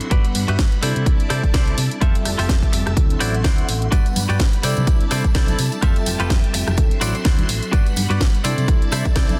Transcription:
Already playing: F#4 C6
0.01 closed hi-hat
0.10 G1 G3 B3 D4 F#4 G4 B4 D5 F#5 B5, kick, closed hi-hat
0.25 closed hi-hat
0.35 G2, muted clean electric guitar stroke, open hi-hat
0.48 G2 F#4 G4 B4 E5, closed hi-hat
0.59 G1, kick, snare, closed hi-hat
0.72 closed hi-hat
0.81 C3 G3 C4 D4 E4 A4 C5 D5 A5, open hi-hat
0.96 C3, closed hi-hat
1.06 C2, kick, closed hi-hat
1.20 closed hi-hat
1.30 C3 E4 A4 C5 D5, cross-stick, open hi-hat
1.44 kick, closed hi-hat
1.54 C2 E4 A4 C5 D5, kick, snare, closed hi-hat
1.68 closed hi-hat
1.78 C3, open hi-hat
1.91 closed hi-hat
2.01 F2 G3 C4 F4 G4 A4 E5 A5, kick, closed hi-hat
2.15 closed hi-hat
2.25 F1, muted clean electric guitar stroke, cross-stick, open hi-hat
2.38 F1 F4 G4 A4 E5, open hi-hat
2.49 F2, kick, cross-stick, snare, closed hi-hat
2.63 kick, closed hi-hat
2.73 F1, muted clean electric guitar stroke, open hi-hat
2.86 F1, muted clean electric guitar stroke, cross-stick, closed hi-hat
2.96 D2 F#3 C4 D4 E4 F#4 A4 C6, kick, closed hi-hat
3.10 closed hi-hat
3.20 A1 E4 F#4 C5 D5, open hi-hat
3.34 closed hi-hat
3.44 D2 E4 F#4 C5 D5, kick, snare, closed hi-hat
3.58 closed hi-hat
3.69 A1, open hi-hat
3.82 closed hi-hat
3.91 G3 B3 D4 F#4 G4 B4 D5 F#5 B5, kick, closed hi-hat, tambourine
4.06 closed hi-hat, tambourine
4.16 G2, muted clean electric guitar stroke, open hi-hat, tambourine, high conga
4.29 G2 F#4 G4 B4 D5, closed hi-hat, tambourine
4.40 G1, kick, snare, closed hi-hat, tambourine
4.53 closed hi-hat
4.63 C3 G3 C4 D4 E4 A4 C5 D5 A5, open hi-hat, tambourine
4.77 C3, closed hi-hat, tambourine, high conga
4.87 C2, kick, closed hi-hat, tambourine
5.01 closed hi-hat
5.11 C3 E4 A4 C5 D5, cross-stick, open hi-hat, tambourine
5.24 kick, closed hi-hat, tambourine
5.35 C2 E4 A4 C5 D5, kick, snare, closed hi-hat, tambourine
5.48 closed hi-hat, tambourine, high conga
5.59 C3, open hi-hat, tambourine
5.72 closed hi-hat, tambourine
5.82 F2 G3 C4 F4 G4 A4 E5, kick, closed hi-hat, tambourine
5.96 closed hi-hat, tambourine
6.06 F1, muted clean electric guitar stroke, open hi-hat, tambourine, high conga
6.20 F1 F4 G4 A4 B4, closed hi-hat, tambourine
6.30 F2, kick, cross-stick, snare, closed hi-hat, tambourine
6.44 closed hi-hat
6.54 F1, muted clean electric guitar stroke, open hi-hat, tambourine
6.67 F1, muted clean electric guitar stroke, cross-stick, closed hi-hat, tambourine, high conga
6.77 D2 F#3 C4 D4 E4 F#4 A4 C6, kick, closed hi-hat, tambourine
6.91 closed hi-hat
7.01 A1 E4 F#4 C5 D5, open hi-hat, tambourine
7.15 muted fingered electric bass stroke, closed hi-hat, tambourine
7.25 D2 E4 F#4 C5 D5, kick, snare, closed hi-hat, tambourine
7.38 closed hi-hat, tambourine, high conga
7.49 A1, open hi-hat, tambourine
7.63 closed hi-hat, tambourine
7.72 G1 G3 B3 D4 F#4 G4 B4 D5 F#5 B5, kick, closed hi-hat, tambourine
7.86 closed hi-hat, tambourine
7.96 G2, muted clean electric guitar stroke, open hi-hat, tambourine, high conga
8.10 G2 F#4 G4 B4 D5, closed hi-hat, tambourine
8.21 G1, kick, snare, closed hi-hat, tambourine
8.35 closed hi-hat
8.44 C3 G3 C4 D4 E4 A4 C5 D5 A5, open hi-hat, tambourine
8.58 C3, closed hi-hat, tambourine, high conga
8.68 C2, kick, closed hi-hat, tambourine
8.82 closed hi-hat
8.92 C3 E4 A4 C5 E5, cross-stick, open hi-hat, tambourine
9.05 kick, closed hi-hat, tambourine
9.16 C2 E4 A4 C5 D5, kick, snare, closed hi-hat, tambourine
9.29 closed hi-hat, tambourine, high conga

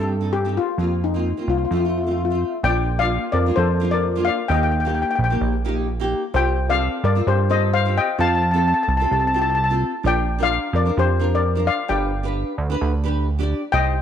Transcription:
Already playing: G2 A4
0.00 C4 D#4 G4
0.21 C4 D#4 A4
0.33 G4
0.45 C4 D#4 G4
0.57 F4
0.78 F2 A#3 C4 F4
1.04 D#4
1.14 A#3 C4 F4
1.37 A#3 C4 F4
1.48 C2 F4
1.58 F4
1.65 F4
1.71 F2 A3 C4 F4
1.81 A3 F4
1.85 C4 F4
1.89 F4
1.98 F4
2.04 A3 C4 F4
2.08 F4
2.18 F4
2.25 F4
2.30 A3 C4 F4
2.63 A#1 A#3 D4 F4 D5 G5
2.99 A#3 D4 F4 D5 F5
3.32 F2 A#4 D5
3.46 A#3 D4 F4
3.56 F2 A4 C5
3.80 A#3 D4 F4
3.91 A#4 D5
4.16 A#3 D4 F4
4.25 D5 F5
4.48 D#2 A#3 D#4 G4 D#5 G5
4.56 G5
4.63 G5
4.72 G5
4.80 G5
4.85 A#3 D#4 G4 G5
4.95 G5
5.02 G5
5.11 G5
5.15 A#1 G5
5.24 G5
5.30 A#3 D#4 G4
5.41 A#1
5.65 A#3 D#4 G4
6.00 A#3 D#4 G4
6.34 C2 C4 F4 G4 C5 G5
6.69 C4 F4 A4 D5 F5
7.04 G2 A#4 D5
7.15 C4 F4 A4
7.27 G2 G4 C5
7.49 C4 F4 A4 C5 D#5
7.74 C5 F5
7.85 C4 F4 G4
7.98 D#5 G5
8.19 F2 C4 F4 A4 F5 A5
8.28 A5
8.35 A5
8.42 A5
8.51 C4 F4 A4 A5
8.58 A5
8.68 A5
8.74 A5
8.83 A5
8.88 C2 A5
8.97 C4 F4 A5
9.02 A4 A5
9.11 C2 A5
9.20 A5
9.27 A5
9.34 C4 F4 G4 A5
9.42 A5
9.50 A5
9.55 A5
9.64 A5
9.70 C4 F4 A4
10.03 A#1 D4 F4 A#4 D5
10.07 G5
10.39 D4 F4 A#4
10.43 D5 F5
10.73 F2 A#4 D5
10.85 D4 F4 A#4
10.97 F2 G4 C5
11.20 D4 F4 A#4
11.35 A#4 D5
11.55 D4 F4 A#4
11.67 D5 F5
11.88 G1 D4 G4 B4 D5 G5
12.23 D4 G4 B4
12.58 D2
12.70 D4 G4 B4
12.81 D2
13.04 D4 G4 B4
13.39 D4 G4 D5
13.72 C2 D#4 G4 C5 D#5 G5

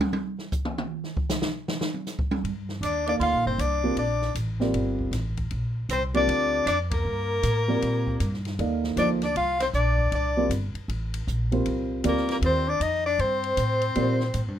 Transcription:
0.01 high tom
0.13 high tom
0.39 snare
0.52 kick, hi-hat pedal
0.65 mid tom
0.78 mid tom
1.04 snare
1.17 kick
1.29 snare, hi-hat pedal
1.42 snare
1.68 snare
1.81 snare
1.94 high tom
2.07 snare, hi-hat pedal
2.19 kick
2.31 high tom
2.44 G2, ride
2.69 snare
2.81 D#2 D4, hi-hat pedal, ride
2.85 D5
3.07 A#3 D4 D#4 A4 D5 F5, ride
3.20 D2 F4 F5, ride
3.33 A#1
3.46 G1 C4 C5
3.58 C2 D4 D5, hi-hat pedal, ride
3.83 G3 C4 F4 A#4 D5
3.96 A#1 D4 D5, ride
4.22 snare
4.35 A1, hi-hat pedal, ride
4.60 G3 C4 F4 A#4 D5, snare
4.74 G1, ride
4.99 kick
5.11 A1, snare, hi-hat pedal, ride
5.37 kick, ride
5.51 A#1, ride
5.89 C2 C4 C5, hi-hat pedal, ride
6.14 G3 C4 D4 F4 A#4 D5, ride
6.27 D2, ride
6.66 F2 D4 D5, hi-hat pedal, ride
6.91 A#3 A#4, kick, ride
7.05 G2
7.43 A2, hi-hat pedal, ride
7.68 G3 C4 F4 A#4 D5
7.82 A#2, ride
8.07 kick
8.20 G2, hi-hat pedal, ride
8.34 snare
8.45 snare, ride
8.59 D#2 A#3 D#4 A4 D5 F5, ride
8.84 snare
8.96 D2 F3 A#3 D4 D#4 A4 C5 D5, hi-hat pedal, ride
9.22 D4 D5, snare, ride
9.36 C2 F4 F5, ride
9.60 C4 C5, snare, ride
9.73 A#1 D4 D5, hi-hat pedal
9.99 kick
10.12 C2 D4 D5, ride
10.37 G3 C4 F4 A#4 D5
10.49 G1, hi-hat pedal, ride
10.74 muted upright bass stroke, ride
10.88 A1, ride
11.14 ride
11.27 A#1, hi-hat pedal
11.51 G3 C4 F4 A#4 C5, ride
11.66 C2, ride
12.03 D2 G3 A#3 C4 F4 A#4 D5, hi-hat pedal, ride
12.09 A#4
12.17 snare
12.29 A#3 A#4, snare, ride
12.41 D#2 C4, ride
12.46 C5
12.68 D4 D5
12.80 F2 D#4 D#5, hi-hat pedal, ride
13.06 D4 D5
13.19 G2 C4 C5, ride
13.44 ride
13.57 A2, hi-hat pedal, ride
13.82 ride
13.95 A#2 G3 C4 F4 A#4 D5, ride
14.20 snare
14.34 A2, hi-hat pedal, ride
14.48 G2

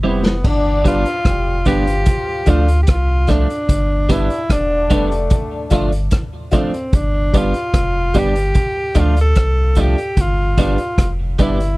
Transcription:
0.03 F1 G3 B3 C4 E4 G4 C5
0.25 G4 C5, snare
0.44 G1 D3 D4, kick, crash
0.84 G1 G3 B3 D4 F4 G4 B4, kick, closed hi-hat
1.05 F3 F4, closed hi-hat
1.24 F1 G3 G4, kick, cross-stick, closed hi-hat
1.65 G1 F3 G3 B3 D4 F4 G4 B4, kick, closed hi-hat
1.87 closed hi-hat
2.06 kick, closed hi-hat
2.46 D2 F3 A3 D4 F4 A4 D5, kick, closed hi-hat
2.68 closed hi-hat
2.83 G4
2.87 C2 F4, kick, cross-stick, closed hi-hat
3.27 F3 A3 D4 F4 A4 D5, kick, cross-stick, closed hi-hat
3.50 muted clean electric guitar stroke, closed hi-hat
3.69 G1, kick, closed hi-hat
4.08 G1 D3 G3 B3 D4 E4 G4 B4 D5, kick, closed hi-hat
4.30 closed hi-hat
4.49 E1 D3 D4, kick, cross-stick, closed hi-hat
4.90 F1 G3 A3 B3 D4 G4 B4 D5, kick, closed hi-hat
5.12 muted clean electric guitar stroke, closed hi-hat
5.30 kick, closed hi-hat
5.70 G1 F3 A3 D4 F4 A4 D5, kick, closed hi-hat
5.92 closed hi-hat
6.11 kick, cross-stick, closed hi-hat
6.51 F3 A3 D4 F4 A4 D5, kick, closed hi-hat
6.55 C4
6.74 muted clean electric guitar stroke, closed hi-hat
6.93 G1 D4, kick, closed hi-hat
7.33 G1 G3 B3 D4 G4 B4 D5, kick, closed hi-hat
7.37 F4
7.54 closed hi-hat
7.74 F1, kick, cross-stick, closed hi-hat
8.14 G1 G3 B3 D4 G4 B4 D5, kick, closed hi-hat
8.19 G4
8.35 closed hi-hat
8.54 kick, closed hi-hat
8.94 D2 F3 A3 D4 F4 A4 D5, kick, closed hi-hat
9.00 F4
9.17 closed hi-hat
9.21 A4
9.35 C2, kick, cross-stick, closed hi-hat
9.75 F3 A3 D4 F4 A4 D5, kick, closed hi-hat
9.81 G4
9.98 muted clean electric guitar stroke, closed hi-hat
10.17 G1, kick, closed hi-hat
10.21 F4
10.57 G1 G3 B3 D4 G4 B4 D5, kick, closed hi-hat
10.62 F4
10.78 closed hi-hat
10.98 F1, kick, cross-stick, closed hi-hat
11.38 G1 G3 B3 D4 E4 G4 B4 D5, kick, closed hi-hat
11.60 closed hi-hat

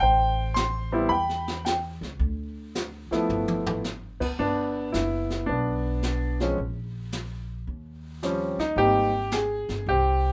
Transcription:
0.00 A1 C5 G5, brush sweep
0.54 C6, snare, hi-hat pedal
0.92 G3 B3 C4 E4
1.09 E2 G5 B5, brush sweep
1.29 snare
1.48 snare
1.65 G5, snare, hi-hat pedal
2.01 C#2, snare
2.19 D2, brush sweep
2.75 snare, hi-hat pedal
3.11 F3 A3 B3 E4, muted upright bass stroke, snare
3.29 G1, floor tom
3.48 high tom
3.66 floor tom
3.84 snare, hi-hat pedal
4.20 B3, kick, crash
4.39 G1 B3 D4, brush sweep
4.92 F#1 E4, snare, hi-hat pedal
5.30 snare
5.46 B1 B3 D4, brush sweep
6.03 snare, hi-hat pedal
6.40 F3 G#3 C4 C#4, snare
6.58 A#1, brush sweep
7.12 snare, hi-hat pedal
7.67 D#2, brush sweep
8.23 F3 G3 C4 C#4, snare, hi-hat pedal
8.59 D#2 D#4, snare
8.76 G#1 G3 A#3 C4 D#4 G4, brush sweep
9.31 G#4, snare, hi-hat pedal
9.69 G1, snare
9.86 C2 C4 G4, brush sweep

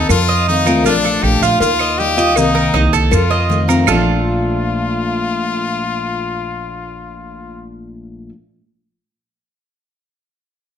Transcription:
Already playing: A4
0.09 F2 F4, muted steel-string acoustic guitar stroke, cowbell, claves, maracas
0.28 D#5, cowbell, maracas
0.47 D#3 A3 C4 D#4 F4, cowbell, maracas
0.66 D#3 A3 C4 F4 A#4, cowbell, claves, maracas
0.84 A#1 F3 A3 D4 F4, cowbell, maracas
1.05 A4, maracas
1.22 A#1 F3 A3 D4 F4 G4, cowbell, claves, maracas
1.41 A#1 F4 F5, maracas
1.60 D#2 F4, muted steel-string acoustic guitar stroke, cowbell, maracas
1.79 D#5, claves, maracas
1.98 D#3 G3 D#4 F4 G4, cowbell, maracas
2.17 G3 D#4 F4 D#5, cowbell, maracas
2.36 C2 C3 D#3 A#3 C4 D#4 G4, cowbell, claves, maracas
2.55 A#4, maracas
2.73 C2 D#3 A#3 C4 D#4 G4, cowbell, maracas
2.93 C2 A4, maracas
3.11 F2 F4, muted steel-string acoustic guitar stroke, cowbell, claves, maracas
3.31 D#5, cowbell, maracas
3.49 D#3 A3 C4 F4, cowbell, maracas
3.68 D#3 A3 C4 F4 A#4, cowbell, claves, maracas
3.86 A#1 A#2 F3 A3 D4 F4 A4, low bongo, claves, maracas

